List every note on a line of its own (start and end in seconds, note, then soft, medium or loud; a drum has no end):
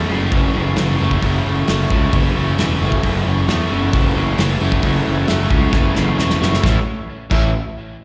0.00 0.12 F#2 medium
0.00 0.12 F#3 medium
0.00 0.11 A3 medium
0.00 0.11 C#4 medium
0.00 0.10 F#4 medium
0.08 0.26 F#1 medium
0.08 0.53 C#3 medium
0.08 0.33 F#3 medium
0.08 0.34 A3 medium
0.08 0.35 C#4 medium
0.08 0.36 F#4 medium
0.13 0.57 F#2 medium
0.13 0.55 C#3 medium
0.32 0.48 F#1 medium
0.32 0.77 E3 medium
0.32 0.56 F#3 medium
0.32 0.56 A3 medium
0.32 0.54 C#4 medium
0.32 kick loud
0.32 open hi-hat soft
0.36 0.54 F#4 medium
0.54 0.71 F#1 medium
0.54 1.23 F#2 medium
0.54 1.01 C#3 medium
0.54 0.78 F#3 medium
0.54 0.78 A3 medium
0.54 0.79 C#4 medium
0.54 0.80 F#4 medium
0.76 0.94 F#1 medium
0.76 2.13 E3 medium
0.76 1.02 F#3 medium
0.76 1.01 A3 medium
0.76 1.00 C#4 medium
0.76 1.00 F#4 medium
0.76 snare loud
0.76 open hi-hat medium
1.00 1.17 F#1 medium
1.00 1.24 F#3 medium
1.00 1.24 A3 medium
1.00 1.25 C#4 medium
1.00 1.26 F#4 medium
1.11 kick medium
1.23 1.38 F#1 medium
1.23 1.92 F#2 medium
1.23 1.69 C#3 medium
1.23 1.48 F#3 medium
1.23 1.47 A3 medium
1.23 1.46 C#4 medium
1.23 1.46 F#4 medium
1.23 kick loud
1.23 open hi-hat medium
1.46 1.62 F#1 medium
1.46 1.68 F#3 soft
1.46 1.69 A3 medium
1.46 1.70 C#4 medium
1.46 1.70 F#4 medium
1.68 1.85 F#1 medium
1.68 1.91 F#3 medium
1.68 1.91 A3 medium
1.68 1.91 C#4 medium
1.68 1.89 F#4 medium
1.68 snare loud
1.68 open hi-hat medium
1.90 2.06 C#2 medium
1.90 2.40 F#2 medium
1.90 2.36 C#3 medium
1.90 2.14 F#3 medium
1.90 2.15 A3 medium
1.90 2.15 C#4 medium
1.90 2.16 F#4 medium
1.90 kick medium
2.13 2.29 F#1 medium
2.13 2.59 E3 medium
2.13 2.39 F#3 medium
2.13 2.38 A3 medium
2.13 2.38 C#4 medium
2.13 2.36 F#4 medium
2.13 kick loud
2.13 open hi-hat medium
2.37 2.52 F#1 medium
2.37 3.05 F#2 medium
2.37 2.83 C#3 medium
2.37 2.58 F#3 medium
2.37 2.60 A3 medium
2.37 2.61 C#4 medium
2.37 2.61 F#4 medium
2.58 2.75 E1 medium
2.58 3.94 E3 medium
2.58 2.84 F#3 medium
2.58 2.83 A3 medium
2.58 2.83 C#4 medium
2.58 2.82 F#4 medium
2.58 snare loud
2.58 open hi-hat medium
2.81 2.97 F#1 medium
2.81 3.06 F#3 medium
2.81 3.06 A3 medium
2.81 3.06 C#4 medium
2.81 3.07 F#4 medium
2.92 kick medium
3.03 3.19 F#1 medium
3.03 3.72 F#2 medium
3.03 3.50 C#3 loud
3.03 3.28 F#3 medium
3.03 3.28 A3 medium
3.03 3.27 C#4 medium
3.03 6.61 E4 medium
3.03 6.61 A4 medium
3.03 6.61 C#5 medium
3.03 6.60 F#5 medium
3.03 kick loud
3.03 open hi-hat medium
3.07 3.26 F#4 medium
3.26 3.42 F#1 medium
3.26 3.48 F#3 medium
3.26 3.50 A3 medium
3.26 3.50 C#4 medium
3.26 3.51 F#4 medium
3.48 3.64 E2 medium
3.48 3.72 F#3 medium
3.48 3.72 A3 medium
3.48 3.70 C#4 medium
3.48 3.70 F#4 medium
3.48 snare loud
3.48 open hi-hat medium
3.70 3.87 F#1 medium
3.70 4.16 F#2 medium
3.70 4.15 C#3 medium
3.70 3.91 F#3 medium
3.70 3.93 A3 medium
3.70 3.93 C#4 medium
3.70 3.93 F#4 medium
3.92 4.10 F#1 loud
3.92 4.38 E3 medium
3.92 4.15 F#3 medium
3.92 4.15 A3 medium
3.92 4.15 C#4 medium
3.92 4.14 F#4 medium
3.92 kick loud
3.92 open hi-hat medium
4.15 4.32 F#1 medium
4.15 4.62 F#2 medium
4.15 4.62 C#3 medium
4.15 4.37 F#3 medium
4.15 4.38 A3 medium
4.15 4.39 C#4 medium
4.15 4.39 F#4 loud
4.38 4.55 F#1 medium
4.38 5.52 E3 medium
4.38 4.62 F#3 medium
4.38 4.61 A3 medium
4.38 4.61 C#4 medium
4.38 4.59 F#4 medium
4.38 snare loud
4.38 open hi-hat medium
4.61 4.77 F#1 medium
4.61 4.82 F#3 medium
4.61 4.84 A3 medium
4.61 4.83 C#4 medium
4.61 4.84 F#4 medium
4.72 kick medium
4.83 4.99 F#1 medium
4.83 5.29 F#2 medium
4.83 5.29 C#3 medium
4.83 5.06 F#3 medium
4.83 5.06 A3 loud
4.83 5.04 C#4 medium
4.83 5.03 F#4 loud
4.83 kick medium
4.83 open hi-hat medium
5.05 5.23 F#1 medium
5.05 5.25 F#3 medium
5.05 5.26 A3 medium
5.05 5.27 C#4 medium
5.05 5.28 F#4 medium
5.26 5.45 F#1 medium
5.26 5.49 F#3 medium
5.26 5.48 A3 medium
5.26 5.48 C#4 medium
5.26 5.47 F#4 medium
5.26 snare loud
5.26 open hi-hat medium
5.48 5.66 C#2 medium
5.48 5.95 F#2 medium
5.48 5.95 C#3 medium
5.48 5.71 F#3 medium
5.48 5.71 A3 medium
5.48 5.72 C#4 medium
5.48 5.73 F#4 medium
5.48 kick medium
5.72 5.89 F#1 loud
5.72 6.18 E3 medium
5.72 5.94 F#3 medium
5.72 5.94 A3 medium
5.72 5.93 C#4 medium
5.72 5.93 F#4 medium
5.72 kick loud
5.72 snare medium
5.94 6.12 F#1 medium
5.94 6.42 F#2 medium
5.94 6.42 C#3 medium
5.94 6.15 F#3 medium
5.94 6.16 A3 medium
5.94 6.17 C#4 medium
5.94 6.18 F#4 medium
5.94 snare medium
6.17 6.35 E1 medium
6.17 6.62 E3 medium
6.17 6.43 F#3 medium
6.17 6.42 A3 medium
6.17 6.41 C#4 medium
6.17 6.40 F#4 medium
6.17 snare medium
6.30 snare medium
6.42 6.57 F#1 medium
6.42 6.63 F#3 medium
6.42 6.62 A3 medium
6.42 6.62 C#4 medium
6.42 6.63 F#4 medium
6.42 snare medium
6.53 snare medium
6.62 6.76 A1 loud
6.62 6.77 A2 loud
6.62 6.85 A2 medium
6.62 6.77 E3 medium
6.62 6.85 A3 medium
6.62 6.77 A3 loud
6.62 6.78 C#4 medium
6.62 6.84 E4 medium
6.62 6.78 E4 medium
6.62 6.78 A4 medium
6.62 6.84 C#5 medium
6.62 6.84 E5 medium
6.62 kick loud
6.62 snare medium
7.30 7.53 A1 medium
7.30 7.49 A2 medium
7.30 7.49 E3 medium
7.30 7.49 A3 loud
7.30 7.49 C#4 medium
7.30 7.50 E4 loud
7.30 7.50 A4 loud
7.30 kick loud
7.30 crash medium